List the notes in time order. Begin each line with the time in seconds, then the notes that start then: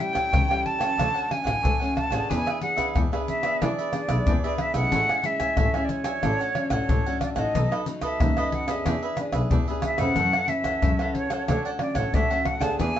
Already playing: A2
0.00 G3 C#4 E4 G5, pandeiro, shaker
0.13 A4 C#5 G5, pandeiro, tamborim, shaker, surdo
0.31 C#2 E3 E4 A4 C#5 G5, pandeiro, tamborim, shaker, surdo
0.48 G3 C#4 E4 A4 C#5 G5, pandeiro, tamborim, shaker
0.66 A5, pandeiro, surdo
0.78 F#3 A3 C#4 A4 C#5 G5, pandeiro, tamborim, shaker
0.97 D2 D3 D4 A4 C#5 F#5, pandeiro, tamborim, shaker, surdo
1.14 A4 C#5 F#5, pandeiro, shaker
1.29 F#3 A3 C#4 G#5, muted cavaquinho stroke, pandeiro, tamborim
1.44 A1 A4 C#5 F#5, pandeiro, tamborim, shaker, surdo
1.62 D2 A2 D4 A4 C#5 F#5, pandeiro, shaker, surdo
1.80 F#3 A3 C#4 A4 C#5 F#5, pandeiro, shaker
1.96 A5, pandeiro, tamborim, surdo
2.10 A1 B3 D4 G#4 A4 C#5 F#5, pandeiro, tamborim, shaker, surdo
2.29 E2 E3 D4 G#4 B4 E5 G#5, pandeiro, shaker, surdo
2.46 G#4 B4 E5, pandeiro, tamborim, shaker
2.61 B3 D4 G#4 F#5, muted cavaquinho stroke, pandeiro
2.76 G#4 B4 E5, pandeiro, tamborim, shaker, surdo
2.95 E2 B2 D4 G#4 B4 E5, pandeiro, tamborim, shaker, surdo
3.12 B3 D4 G#4 B4 E5, pandeiro, tamborim, shaker
3.28 E5, pandeiro, shaker, surdo
3.43 B3 D4 G#4 B4 E5, pandeiro, tamborim, shaker
3.61 E3 D4 G#4 B4 D5 E5, pandeiro, tamborim, shaker, surdo
3.78 G#4 B4 E5, pandeiro, shaker
3.92 B3 D4 G#4, muted cavaquinho stroke, pandeiro, tamborim, shaker
4.08 B1 G#4 B4 E5, pandeiro, tamborim, shaker, surdo
4.26 E2 B2 D4 G#4 B4 E5, pandeiro, shaker, surdo
4.43 B3 D4 G#4 B4 E5, pandeiro, shaker
4.58 E5, pandeiro, tamborim
4.74 B1 G#3 C#4 E4 G#4 B4 E5 F#5, pandeiro, tamborim, shaker, surdo
4.92 A1 A2 A4 C#5 E5 G#5, pandeiro, shaker, surdo
5.09 C#5 E5 G#5, pandeiro, tamborim, shaker
5.24 G#3 C#4 E4 E5, muted cavaquinho stroke, pandeiro, shaker
5.40 C#5 E5 G#5, pandeiro, tamborim, shaker, surdo
5.57 A1 E3 A4 C#5 E5 G#5, pandeiro, tamborim, shaker, surdo
5.74 G#3 C#4 E4 C#5 E5 G#5, pandeiro, tamborim, shaker
5.85 D5
5.89 C#5, pandeiro, shaker, surdo
6.04 F#3 C#4 D4 C#5 E5 G#5, pandeiro, tamborim, shaker
6.23 A1 A2 D4 A4 C#5 F#5, pandeiro, tamborim, shaker, surdo
6.40 A4 C#5 F#5, pandeiro, shaker
6.55 F#3 C#4 D4, muted cavaquinho stroke, pandeiro, tamborim
6.70 A1 A4 C#5 F#5, pandeiro, tamborim, shaker, surdo
6.89 A1 A2 D4 A4 C#5 F#5, pandeiro, shaker, surdo
7.06 F#3 C#4 D4 A4 C#5 F#5, pandeiro, shaker
7.21 D5, pandeiro, tamborim, shaker, surdo
7.36 A1 F#3 A3 D#4 A4 C#5 D#5 F#5, pandeiro, tamborim, shaker, surdo
7.54 B1 B2 D#4 A4 B4 D#5, pandeiro, shaker, surdo
7.71 A4 B4 D#5, pandeiro, tamborim, shaker
7.86 F#3 A3 D#4, muted cavaquinho stroke, pandeiro, shaker
8.01 A4 B4 D#5 E5, pandeiro, tamborim, shaker, surdo
8.20 D#2 F#2 D#4 B4 D#5, pandeiro, tamborim, shaker, surdo
8.37 F#3 A3 D#4 A4 B4 D#5, pandeiro, tamborim, shaker
8.52 F#5, pandeiro, surdo
8.67 B3 D4 G#4 A4 B4 D#5 E5, pandeiro, tamborim, shaker
8.86 E2 E3 D4 G#4 B4 E5, pandeiro, tamborim, shaker, surdo
9.02 G#4 B4 E5, pandeiro, shaker
9.17 B3 D4 G#4, muted cavaquinho stroke, pandeiro, tamborim, shaker
9.32 B1 G#4 B4 E5, pandeiro, tamborim, shaker, surdo
9.51 E2 B2 D4 G#4 B4 E5, pandeiro, shaker, surdo
9.68 B3 D4 G#4 B4 E5, pandeiro, shaker
9.82 E5, pandeiro, tamborim, shaker, surdo
9.98 F2 E3 A3 C#4 G#4 B4 E5 F#5, pandeiro, tamborim, shaker, surdo
10.16 F#2 E4 A4 C#5 F#5, pandeiro, shaker, surdo
10.33 A4 C#5 F#5, pandeiro, tamborim, shaker
10.48 E3 A3 C#4 E5, muted cavaquinho stroke, pandeiro
10.64 A4 C#5 F#5, pandeiro, tamborim, shaker, surdo
10.82 F#2 C#3 E4 A4 C#5 F#5, pandeiro, tamborim, shaker, surdo
10.99 E3 A3 C#4 A4 C#5 F#5, pandeiro, tamborim, shaker
11.14 C#5, pandeiro, surdo
11.30 F#3 A3 C#4 A4 C#5 F#5, pandeiro, tamborim, shaker
11.48 D2 D3 D4 A4 C#5 F#5, pandeiro, tamborim, shaker, surdo
11.65 A4 C#5 D5 F#5, pandeiro, shaker
11.79 F#3 A3 C#4 D5, muted cavaquinho stroke, pandeiro, tamborim
11.95 A1 A4 C#5 F#5, pandeiro, tamborim, shaker, surdo
12.13 D2 A2 D4 A4 C#5 E5 F#5, pandeiro, shaker, surdo
12.30 F#3 A3 C#4 A4 C#5 F#5, pandeiro, shaker
12.45 F#5, pandeiro, tamborim, surdo
12.59 D2 B3 D4 G#4 A4 C#5 F#5 A5, pandeiro, tamborim, shaker, surdo
12.78 E2 E3 D4 G#4 B4 E5 G#5, pandeiro, shaker, surdo
12.96 E5, pandeiro, tamborim, shaker